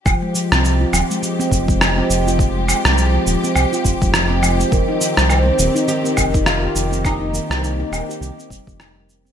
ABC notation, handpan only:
X:1
M:4/4
L:1/16
Q:"Swing 16ths" 1/4=103
K:Fm
V:1 name="Handpan" clef=bass
F, A, F, C F, F F, A, F, C F, A, F, C F, F | F, A, F, C F, A, F, C F, F F, A, F, C F, A, | E, E E, G E, C E, E E, C E, E E, G E, C | E, E E, C E, E E, G E, C G, E, z G, C C |]